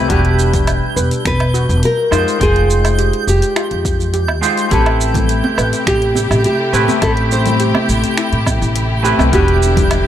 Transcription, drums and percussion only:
0.10 kick loud
0.10 closed hi-hat medium
0.10 shaker soft
0.25 closed hi-hat soft
0.39 shaker medium
0.53 kick loud
0.53 closed hi-hat soft
0.53 shaker soft
0.67 closed hi-hat medium
0.67 low woodblock medium
0.67 shaker soft
0.97 shaker medium
1.11 closed hi-hat soft
1.11 shaker soft
1.25 finger snap medium
1.25 kick loud
1.25 closed hi-hat medium
1.25 shaker soft
1.40 closed hi-hat soft
1.40 low woodblock medium
1.55 shaker medium
1.70 shaker soft
1.83 closed hi-hat medium
1.83 shaker soft
2.12 low woodblock medium
2.12 shaker medium
2.28 shaker soft
2.41 kick loud
2.41 closed hi-hat medium
2.41 shaker soft
2.56 closed hi-hat soft
2.70 shaker medium
2.85 closed hi-hat soft
2.85 low woodblock medium
2.85 shaker soft
2.99 closed hi-hat medium
2.99 shaker soft
3.13 closed hi-hat soft
3.28 shaker medium
3.42 closed hi-hat soft
3.42 shaker soft
3.56 finger snap medium
3.56 closed hi-hat medium
3.56 low woodblock medium
3.56 shaker soft
3.71 closed hi-hat soft
3.85 kick loud
3.85 shaker medium
4.00 shaker soft
4.14 closed hi-hat medium
4.14 shaker soft
4.28 low woodblock medium
4.43 shaker medium
4.57 closed hi-hat soft
4.57 shaker soft
4.71 kick loud
4.71 closed hi-hat medium
4.71 shaker soft
4.86 closed hi-hat soft
4.86 low woodblock medium
5.01 shaker medium
5.14 kick loud
5.14 closed hi-hat soft
5.14 low conga medium
5.14 shaker soft
5.29 closed hi-hat medium
5.29 shaker soft
5.44 high conga loud
5.58 low woodblock medium
5.58 shaker medium
5.73 closed hi-hat soft
5.73 shaker soft
5.87 finger snap medium
5.87 kick loud
5.87 closed hi-hat medium
5.87 shaker soft
6.02 closed hi-hat soft
6.15 high conga medium
6.15 shaker medium
6.31 low woodblock medium
6.31 shaker soft
6.44 closed hi-hat medium
6.44 shaker soft
6.74 shaker medium
6.88 high conga medium
6.88 shaker soft
7.02 kick loud
7.02 closed hi-hat medium
7.02 low woodblock medium
7.02 shaker soft
7.17 closed hi-hat soft
7.31 shaker medium
7.46 closed hi-hat soft
7.46 low conga medium
7.46 shaker soft
7.60 closed hi-hat medium
7.60 shaker soft
7.75 high conga medium
7.75 low woodblock medium
7.89 shaker medium
8.04 closed hi-hat soft
8.04 shaker soft
8.18 finger snap medium
8.18 closed hi-hat medium
8.18 shaker soft
8.33 closed hi-hat soft
8.46 kick loud
8.46 high conga medium
8.46 low woodblock medium
8.46 shaker medium
8.62 shaker soft
8.76 closed hi-hat medium
8.76 shaker soft
9.05 shaker medium
9.19 high conga medium
9.19 low woodblock medium
9.19 shaker soft
9.33 kick loud
9.33 closed hi-hat medium
9.33 shaker soft
9.48 closed hi-hat soft
9.63 shaker medium
9.77 kick loud
9.77 closed hi-hat soft
9.77 low conga medium
9.77 shaker soft
9.91 closed hi-hat medium
9.91 low woodblock medium
9.91 shaker soft

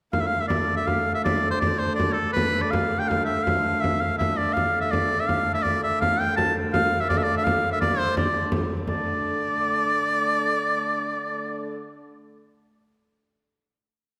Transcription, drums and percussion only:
0.13 frame drum medium
0.50 frame drum medium
0.87 frame drum medium
1.26 frame drum medium
1.62 frame drum medium
2.00 frame drum medium
2.18 frame drum soft
2.37 frame drum medium
2.73 frame drum medium
3.11 frame drum medium
3.29 frame drum soft
3.47 frame drum medium
3.84 frame drum medium
4.21 frame drum medium
4.57 frame drum medium
4.93 frame drum medium
5.29 frame drum medium
5.48 frame drum soft
5.66 frame drum medium
6.02 frame drum medium
6.38 frame drum medium
6.56 frame drum soft
6.74 frame drum medium
7.10 frame drum medium
7.47 frame drum medium
7.64 frame drum soft
7.82 frame drum medium
8.17 frame drum medium
8.52 frame drum medium
8.87 frame drum medium

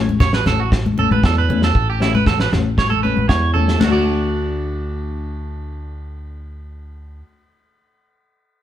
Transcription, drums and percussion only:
0.09 high conga medium
0.20 kick medium
0.20 snare medium
0.20 low conga medium
0.33 snare medium
0.46 snare medium
0.46 low conga medium
0.72 kick medium
0.72 snare medium
0.86 high conga medium
0.98 low conga medium
1.11 high conga medium
1.24 kick medium
1.24 snare medium
1.50 low conga medium
1.62 snare medium
1.75 kick medium
2.01 snare medium
2.15 high conga medium
2.26 kick medium
2.26 snare medium
2.26 low conga medium
2.40 snare medium
2.52 snare soft
2.52 low conga medium
2.78 kick medium
2.78 snare medium
2.78 high conga soft
2.91 high conga medium
3.04 high conga soft
3.17 high conga medium
3.29 kick medium
3.29 snare medium
3.55 low conga soft
3.68 snare soft
3.81 snare medium
3.81 ride bell soft
3.81 high conga medium

